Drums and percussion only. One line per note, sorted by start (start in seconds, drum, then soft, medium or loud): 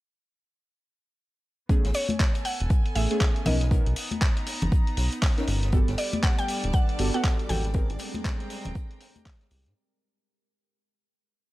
1.69 kick loud
1.69 closed hi-hat medium
1.85 snare medium
1.85 closed hi-hat medium
1.94 closed hi-hat medium
1.94 open hi-hat loud
2.09 closed hi-hat medium
2.09 high conga medium
2.19 kick loud
2.19 snare loud
2.19 clap loud
2.19 closed hi-hat medium
2.35 closed hi-hat soft
2.35 closed hi-hat medium
2.45 closed hi-hat medium
2.45 open hi-hat loud
2.60 closed hi-hat medium
2.70 kick loud
2.70 closed hi-hat medium
2.86 closed hi-hat soft
2.96 closed hi-hat medium
2.96 open hi-hat loud
3.11 closed hi-hat medium
3.20 kick loud
3.20 snare loud
3.20 clap loud
3.20 closed hi-hat medium
3.36 closed hi-hat soft
3.46 closed hi-hat medium
3.46 open hi-hat loud
3.46 low conga medium
3.61 snare soft
3.61 closed hi-hat medium
3.71 kick loud
3.71 closed hi-hat medium
3.86 closed hi-hat medium
3.96 closed hi-hat medium
3.96 open hi-hat loud
4.11 closed hi-hat medium
4.11 high conga medium
4.21 kick loud
4.21 snare loud
4.21 clap loud
4.21 closed hi-hat medium
4.37 closed hi-hat medium
4.46 snare soft
4.46 closed hi-hat medium
4.46 open hi-hat loud
4.62 closed hi-hat medium
4.62 low conga medium
4.72 kick loud
4.72 closed hi-hat medium
4.87 closed hi-hat soft
4.97 snare medium
4.97 closed hi-hat medium
4.97 open hi-hat loud
5.12 closed hi-hat soft
5.12 closed hi-hat medium
5.22 kick loud
5.22 snare loud
5.22 clap loud
5.22 closed hi-hat medium
5.22 open hi-hat medium
5.38 snare medium
5.38 closed hi-hat soft
5.48 closed hi-hat medium
5.48 open hi-hat loud
5.63 snare soft
5.63 closed hi-hat medium
5.72 kick loud
5.72 closed hi-hat medium
5.88 snare medium
5.88 closed hi-hat medium
5.98 closed hi-hat medium
5.98 open hi-hat loud
6.13 closed hi-hat medium
6.13 high conga medium
6.23 kick loud
6.23 snare loud
6.23 clap loud
6.23 closed hi-hat medium
6.38 closed hi-hat soft
6.38 closed hi-hat medium
6.48 closed hi-hat medium
6.48 open hi-hat loud
6.64 closed hi-hat medium
6.73 kick loud
6.73 closed hi-hat medium
6.89 closed hi-hat soft
6.99 closed hi-hat medium
6.99 open hi-hat loud
7.14 closed hi-hat medium
7.24 kick loud
7.24 snare loud
7.24 clap loud
7.24 closed hi-hat medium
7.39 closed hi-hat soft
7.49 closed hi-hat medium
7.49 open hi-hat loud
7.49 low conga medium
7.65 snare soft
7.65 closed hi-hat medium
7.74 kick loud
7.74 closed hi-hat medium
7.90 closed hi-hat medium
7.99 closed hi-hat medium
7.99 open hi-hat loud
8.14 closed hi-hat medium
8.14 high conga medium
8.25 kick loud
8.25 snare loud
8.25 clap loud
8.25 closed hi-hat medium
8.40 closed hi-hat medium
8.50 snare soft
8.50 closed hi-hat medium
8.50 open hi-hat loud
8.65 closed hi-hat medium
8.65 low conga medium
8.75 kick loud
8.75 closed hi-hat medium
8.91 closed hi-hat soft
9.00 snare medium
9.00 closed hi-hat medium
9.00 open hi-hat loud
9.16 closed hi-hat soft
9.16 closed hi-hat medium
9.16 high conga medium
9.25 kick loud
9.25 snare loud
9.25 clap loud
9.25 closed hi-hat medium
9.25 open hi-hat medium
9.41 snare medium
9.41 closed hi-hat soft
9.51 closed hi-hat medium
9.51 open hi-hat loud
9.66 snare medium
9.66 closed hi-hat medium